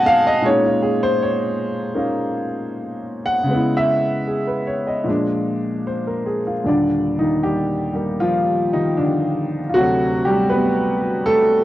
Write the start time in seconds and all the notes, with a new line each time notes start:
Already playing: B2 F#3 G#3 A3 C#4 D#4 D#5 F#5 G#5 A5
0.06 F5
0.27 D#5
0.42 A#2 G#3 C#4 C#5
0.48 D#4
0.65 F4
0.82 G#4
1.03 C5
1.22 C#5
1.95 A#3 C#4 D#4 F4
3.26 F#5
3.43 C#3
3.47 G#3 B3
3.54 E4
3.77 E5
4.27 G#4
4.47 B4
4.67 C#5
4.87 D#5
5.04 A#2 F3 G#3
5.09 D4
5.87 C5
6.07 A#4
6.26 G#4
6.47 F4
6.64 D#2 A#2 G3 D4
6.69 D3 D5
7.19 D#3 D#4
7.43 G3 G4
7.93 G3 A#3 G4
8.20 F3 F4
8.73 D#3 D#4
8.97 D3 D4
9.69 F4
9.74 D2 C3 D3 F#3 A3 F#4
10.25 G3 G4
10.50 B3 B4
11.26 A3 A4